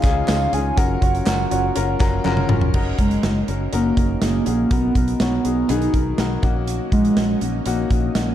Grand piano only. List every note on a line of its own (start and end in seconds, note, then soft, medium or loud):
0.00 0.03 C#4 medium
0.00 0.23 C#4 medium
0.00 0.03 D#4 medium
0.00 0.23 D#4 medium
0.00 0.04 F4 medium
0.00 0.24 F4 medium
0.00 0.04 G#4 loud
0.04 0.24 G#4 loud
0.27 0.48 C#4 loud
0.27 0.48 D#4 medium
0.27 0.48 F4 medium
0.27 0.48 G#4 loud
0.52 0.72 C#4 medium
0.52 0.73 D#4 medium
0.52 0.73 F4 medium
0.52 0.73 G#4 medium
0.76 0.97 C#4 medium
0.76 0.97 F4 medium
0.76 0.97 F#4 medium
0.76 0.97 A#4 loud
1.01 1.22 C#4 medium
1.01 1.22 F4 medium
1.01 1.22 F#4 medium
1.01 1.22 C#5 medium
1.26 1.46 C#4 medium
1.26 1.46 F4 medium
1.26 1.47 F#4 medium
1.26 1.47 A#4 medium
1.51 1.71 C#4 medium
1.51 1.71 F4 medium
1.51 1.71 F#4 medium
1.51 1.71 C#5 medium
1.75 1.95 C#4 medium
1.75 1.96 F4 medium
1.75 1.96 F#4 medium
1.75 1.96 A#4 loud
2.00 2.20 C#4 loud
2.00 2.20 F4 loud
2.00 2.20 F#4 loud
2.00 2.21 A#4 loud
2.00 2.23 A#5 medium
2.24 2.45 C#4 loud
2.24 2.45 F4 loud
2.24 2.45 F#4 loud
2.24 2.45 A#4 loud
2.24 2.48 G#5 medium
2.49 2.69 C#4 medium
2.49 2.70 F4 medium
2.49 2.70 F#4 medium
2.49 2.70 A#4 loud
2.49 2.73 F#5 medium
2.74 2.94 C#4 loud
2.74 2.94 D#4 medium
2.74 2.95 F#4 loud
2.74 2.95 A#4 loud
2.98 3.18 C#4 medium
2.98 3.19 D#4 medium
2.98 3.19 F#4 medium
2.98 3.19 A#4 medium
3.23 3.43 C#4 medium
3.23 3.43 D#4 medium
3.23 3.43 F#4 medium
3.23 3.44 A#4 medium
3.48 3.68 C#4 medium
3.48 3.68 D#4 medium
3.48 3.68 F#4 medium
3.48 3.68 A#4 medium
3.72 3.92 C#4 medium
3.72 3.92 D#4 medium
3.72 3.93 F#4 medium
3.72 3.93 A#4 loud
3.97 4.17 C#4 medium
3.97 4.17 D#4 medium
3.97 4.17 F#4 medium
3.97 4.18 A#4 medium
4.21 4.41 C#4 medium
4.21 4.42 D#4 medium
4.21 4.42 F#4 medium
4.21 4.42 G#4 medium
4.45 4.66 C#4 medium
4.45 4.66 D#4 medium
4.45 4.66 F#4 medium
4.45 4.66 G#4 medium
4.71 4.91 B3 medium
4.71 4.91 D#4 medium
4.71 4.91 F#4 medium
4.71 4.91 A#4 medium
4.95 5.15 B3 medium
4.95 5.15 D#4 medium
4.95 5.16 F#4 medium
4.95 5.16 A#4 medium
5.20 5.40 B3 medium
5.20 5.40 D#4 medium
5.20 5.40 F#4 medium
5.20 5.40 C#5 medium
5.44 5.64 B3 medium
5.44 5.65 D#4 medium
5.44 5.65 F#4 medium
5.44 5.65 G#4 medium
5.68 5.89 B3 loud
5.68 5.89 D#4 medium
5.68 5.89 F#4 medium
5.68 5.89 G#4 loud
5.93 6.13 B3 medium
5.93 6.14 D#4 medium
5.93 6.14 F#4 medium
5.93 6.14 A#4 medium
6.18 6.38 B3 medium
6.18 6.38 D#4 medium
6.18 6.38 F#4 medium
6.18 6.39 A#4 medium
6.42 6.82 A#3 medium
6.42 6.83 C#4 medium
6.42 6.83 D#4 medium
6.42 6.83 F#4 loud
6.92 7.12 A#3 medium
6.92 7.12 C#4 medium
6.92 7.12 D#4 medium
6.92 7.13 F#4 medium
7.16 7.37 A#3 medium
7.16 7.37 C#4 medium
7.16 7.37 D#4 medium
7.16 7.37 F#4 medium
7.41 7.61 A#3 medium
7.41 7.61 C#4 medium
7.41 7.62 D#4 medium
7.41 7.62 F#4 medium
7.66 7.86 A#3 medium
7.66 7.86 C#4 medium
7.66 7.86 D#4 medium
7.66 7.86 F#4 loud
7.90 8.10 A#3 medium
7.90 8.11 C#4 medium
7.90 8.11 D#4 medium
7.90 8.11 F#4 medium
8.15 8.35 A#3 medium
8.15 8.35 C#4 medium
8.15 8.35 D#4 medium
8.15 8.35 F#4 medium